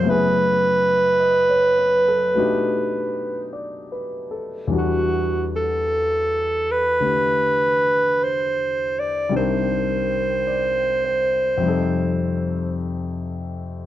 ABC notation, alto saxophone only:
X:1
M:4/4
L:1/8
Q:"Swing" 1/4=52
K:Em
V:1 name="Alto saxophone"
B6 z2 | F A2 B3 c d | c6 z2 |]